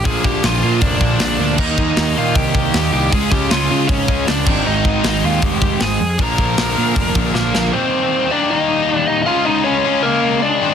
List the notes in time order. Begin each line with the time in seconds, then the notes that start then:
0.05 A#1 A#2 D3 F3 A#3 D4 G#4 G#5, kick, open hi-hat
0.24 A#1 G4 G5, kick
0.43 A#1 F4 F5, snare, open hi-hat
0.62 A#2 D3 F3 A#3 D4
0.81 F1 D4 D5, kick, open hi-hat
1.01 A#1, kick
1.20 A#1 D4 D5, snare, open hi-hat
1.38 D2 A#2 F3 A#3
1.58 D#2 D#3 G3 A#3 D#4 D#5, kick, crash
1.78 kick
1.97 D#2, snare, open hi-hat
2.16 A#2 D#3 G3 A#3 D#4 F4 F5
2.35 C2 G4 G5, kick, open hi-hat
2.55 kick
2.74 D#2, snare, open hi-hat
2.92 C2 D#3 A#3 D#4 G4 G5
3.12 C#2 C#3 G#3 C#4 F4 G#4 G#5, kick, open hi-hat
3.32 C#2 G4 G5, kick
3.50 C#2 F4 F5, snare, open hi-hat
3.70 C#3 G#3 C#4 F4
3.88 G#1 C#4 C#5, kick, open hi-hat
4.08 C#2, kick
4.27 C#2 D4 D5, snare, open hi-hat
4.46 G#1 G#2 D#3 G#3 C4 D#4, kick, crash
4.67 G#1 D#4 D#5
4.85 kick
5.03 G#1 G#2 D#3 G#3 C4 D#4, snare, open hi-hat
5.24 D#2 F4 F5
5.42 F1 G4 G5, kick, open hi-hat
5.62 kick
5.80 G#1 G#2 D#3 G#3 G#4 G#5, snare, open hi-hat
6.00 F2
6.19 A#1 A#2 D3 F3 A#3 D4 A#4, kick
6.23 A#5
6.38 A#1, kick
6.57 A#1, snare, open hi-hat
6.77 A#2 D3 F3 A#3 D4
6.96 F1, kick, open hi-hat
7.15 A#1, kick
7.35 A#1 A#3 A#4, snare
7.53 A#1 A#2 F3 A#3, snare
7.73 D#3 G3 A#3 C4 D#4 G4 C5
8.30 D#3 G3 A#3 D4 D#4 G4 D5
8.51 D#4 D#5
8.94 D5
9.08 D#4 D#5
9.22 C#3 D#5 F5
9.27 G#3 C#4 F4
9.45 D#4 D#5
9.64 C#4 C#5
9.85 C#3 G#3 C#4 F4
10.03 A#3 A#4
10.42 D4 D5
10.61 G#2 D#3 G#3 C4 D#4